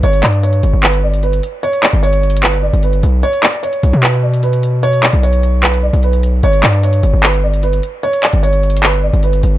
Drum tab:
HH |x--x--x--x--x--x--x-----x--x-----x--x--x--x-----|x--x--x--x--x--x--x-x-x-x--x-----x--x--x--x-----|x--x--x--x--x--x--x-----x--x-----x--x--x--x-----|x--x--x--x--x--x--x-----x--x-----x--x--x--x-----|
CP |------x-----------------x-----------------------|------x-----------------x-----------------------|------x-----------------x-----------------------|------x-----------------x-----------------------|

HH |x--x--x--x--x--x--x-----x--x-----x--x--x--x-----|x--x--x--x--x--x--x-x-x-x--x-----x--x--x--x-----|
CP |------x-----------------x-----------------------|------x-----------------x-----------------------|